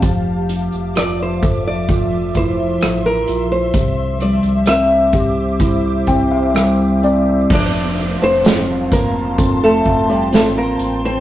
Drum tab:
CC |----------------|----------------|x---------------|
HH |x-xxx-x-x-x-x-x-|x-xxx-x-x-x-x-x-|--x-x-x-x-x-x-x-|
SD |----r-------r---|----r-------r---|----o-------o---|
BD |o-----o-o-o-----|o-----o-o-o-----|o-----o-o-o-----|